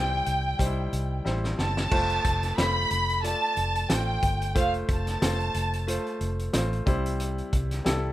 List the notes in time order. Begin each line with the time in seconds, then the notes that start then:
Already playing: C2 G3 C4 E4 C5 G5
0.26 C2, closed hi-hat
0.59 C2 G3 D#4 C5, kick, closed hi-hat
0.66 E4
0.93 C2, closed hi-hat
1.25 A1 G3 E4 C5, snare
1.44 snare
1.59 F#1 A5, snare
1.77 snare
1.91 F1 A3 F4 C5, kick, crash
2.10 closed hi-hat
2.24 F1, kick, closed hi-hat
2.43 snare, closed hi-hat
2.57 F1 A3 F4 C5 B5, snare, closed hi-hat
2.91 F1, closed hi-hat
3.09 closed hi-hat
3.23 A3 F4 D5 A5, closed hi-hat
3.57 F1, closed hi-hat
3.75 closed hi-hat
3.89 A1 A3 F4 C5 G5, snare, closed hi-hat
4.23 G1, kick, closed hi-hat
4.42 closed hi-hat
4.55 F1 A3 F4 C5 F5, kick, closed hi-hat
4.74 closed hi-hat
4.88 F1 A5, kick, closed hi-hat
5.07 snare, closed hi-hat
5.21 F1 A3 F4 C5, snare, closed hi-hat
5.40 closed hi-hat
5.54 F1, closed hi-hat
5.73 closed hi-hat
5.87 A3 F4 C5, closed hi-hat
6.07 closed hi-hat
6.21 F1, closed hi-hat
6.39 closed hi-hat
6.53 A1 A3 F4 C5, snare, closed hi-hat
6.73 closed hi-hat
6.86 C2 C3 G3 E4 C5, kick, closed hi-hat
7.06 closed hi-hat
7.20 closed hi-hat
7.38 closed hi-hat
7.53 C2, kick, closed hi-hat
7.71 snare, closed hi-hat
7.85 C2 G3 E4 A4, snare, closed hi-hat